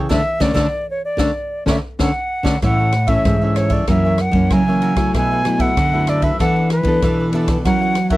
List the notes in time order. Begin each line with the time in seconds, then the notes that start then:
0.09 D3 A3 C#4 D4 A4 C#5 D5 E5, kick, snare
0.40 D3 A3 C#4 D4 A4 C#5 D5, kick, snare
0.54 D3 A3 C#4 D4 A4 C#5 D5, kick, snare
0.90 C#5
1.05 D5
1.17 D3 A3 C#4 D4 A4 C#5 D5, kick, snare
1.66 D3 A3 C#4 D4 A4 C#5 D5 E5, kick, snare
1.99 D3 A3 C#4 D4 A4 C#5 D5 F#5, kick, snare
2.43 D3 A3 C#4 D4 A4 C#5 D5, kick, snare
2.62 A2 E3 A3 C#4 E4 A4 C#5 E5 F#5, kick, cross-stick, ride
2.79 A4 C#5 E5
2.92 muted cavaquinho stroke, cross-stick, ride
3.07 E3 A3 C#4 A4 C#5 E5, kick, ride
3.25 G#2 E3, kick, cross-stick, ride
3.42 E3 C#4 A4 C#5 E5
3.55 E4 A4 C#5 E5, cross-stick, ride
3.70 A4 C#5 D5 E5, kick, ride
3.87 F#2 E3 A#3 C#4 F#4 A#4 C#5 E5, kick, cross-stick, ride
4.05 A#4 C#5 E5
4.18 F#5, muted cavaquinho stroke, cross-stick, ride
4.31 F#2 E3 A#3, kick, ride
4.35 C#4
4.50 C#3 F#3 F#4 A#4 C#5 E5 G#5, kick, cross-stick, ride
4.68 E3 A#3 C#4 A#4 C#5 E5
4.82 F#4 A#4 C#5 E5, ride
4.96 F#3 A3 E4 A#4 C#5 E5, kick, cross-stick, ride
5.14 B2 E4 A4 B4 E5 G#5, kick, cross-stick, ride
5.31 A4 B4 E5
5.45 F#3 A3 E4, muted cavaquinho stroke, cross-stick, ride
5.59 A4 B4 E5 F#5, kick, ride
5.77 F#2 D3, kick, cross-stick, ride
5.93 F#3 A3 E4 A4 B4 E5
6.07 E4 A4 B4 D5 E5, cross-stick, ride
6.22 A4 B4 E5, kick, ride
6.39 E3 B3 D4 E4 A4 B4 D5 F#5, kick, cross-stick, ride
6.56 A4 B4 D5
6.70 B4, muted cavaquinho stroke, cross-stick, ride
6.83 E3 B3 D4, kick, ride
6.88 A4
7.02 B2 E3 E4 A4 B4 D5, kick, cross-stick, ride
7.19 A4 B4 D5
7.33 B3 D4 E4 A4 B4 D5, ride
7.48 A4 B4 D5, kick, cross-stick, ride
7.65 F#3 C#4 E4 A#4 C#5 F#5, kick, cross-stick, ride
7.82 A#4 C#5 F#5
7.95 muted cavaquinho stroke, cross-stick, ride
8.10 C#4 E4 A#4 C#5 E5 F#5, kick, ride